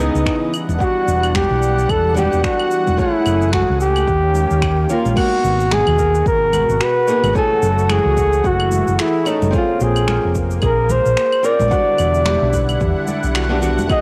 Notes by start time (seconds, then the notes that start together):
Already playing: C#3 E3 B3 D#4 D#5
0.00 E3 D#4 G#4, high conga
0.15 C#2, shaker
0.26 finger snap, kick, shaker
0.54 G3 D4 F#5, claves, shaker
0.68 E1, high conga, shaker
0.79 G3 B3 D4 F#4 F#5, kick, shaker
1.08 E1, shaker
1.23 claves, shaker
1.35 G4, finger snap, kick, high conga, shaker
1.50 B1
1.62 shaker
1.79 shaker
1.89 E1 A4, kick, claves, shaker
2.14 G3 B3 D4 F#4 G4, high conga, low conga, shaker
2.33 E1, shaker
2.44 F#4, finger snap, kick, shaker
2.59 claves
2.71 shaker
2.87 E1, high conga, shaker
2.97 A3 C#4 E4 G#4, kick, shaker
3.26 F#1, claves, shaker
3.42 shaker
3.53 F#4, finger snap, kick, high conga, shaker
3.70 C#2
3.81 G4, shaker
3.96 claves, shaker
4.07 D#2 D#3 A#3 C#4 G4, kick, shaker
4.35 high conga, shaker
4.51 D#2, shaker
4.62 finger snap, kick, claves, shaker
4.89 A#3 C#4 F4 A#4, low conga, shaker
5.05 A#1, high conga, shaker
5.16 B2 A#3 B3 D#4 F#4, kick, crash, claves, shaker
5.44 G#1, shaker
5.60 shaker
5.71 G#4, finger snap, high conga, shaker
5.87 D#2, claves
5.99 A#4, kick, shaker
6.15 shaker
6.26 G#1 A#4, kick, shaker
6.53 B4, high conga, low conga, claves, shaker
6.69 G#1, shaker
6.80 F#4 B4, finger snap, shaker
7.08 A#3 B3 D#4 G#4, shaker
7.23 G#1, high conga, claves, shaker
7.33 E3 A3 C#4 E4 G#4 A4 G#5, kick, shaker
7.62 F#1 A4, shaker
7.79 shaker
7.89 G#4, finger snap, high conga, claves, shaker
8.05 C#2
8.17 C#5, kick, shaker
8.33 shaker
8.44 F#1 F#4, kick, shaker
8.60 claves
8.71 high conga, shaker
8.88 F#1, shaker
8.99 E4 G#4, finger snap, shaker
9.25 A3 C#4 D#4 E4 A4, claves, shaker
9.42 F#1, high conga, shaker
9.51 A#3 C4 C#4 F4, kick, shaker
9.55 F4 G#4
9.80 A#1 G#4 C5, shaker
9.96 claves, shaker
10.08 F4, finger snap, high conga, shaker
10.25 F1
10.35 kick, shaker
10.51 shaker
10.62 A#1 G#4 A#4, kick, claves, shaker
10.89 A#4 C5, high conga, low conga, shaker
11.06 A#1, shaker
11.17 finger snap, shaker
11.32 claves
11.43 C4 C#4 F4 A#4 C5 D5, shaker
11.60 A#1, high conga, shaker
11.68 D3 G3 B3 D4 E4 F#5, kick, shaker
11.72 F#4
11.98 E1, claves, shaker
12.14 shaker
12.25 G4, finger snap, high conga, shaker
12.42 B1
12.53 B4, kick, shaker
12.69 claves, shaker
12.81 E2, kick, shaker
13.07 D5, high conga, shaker
13.23 B1, shaker
13.35 F#4, finger snap, claves, shaker
13.49 B3 D4 F#4 G4
13.61 B3 D4 F#4 G4, low conga, shaker
13.78 E1, high conga, shaker
13.88 B2 B3 D#4 F#4 G#4 D#5, kick, claves, shaker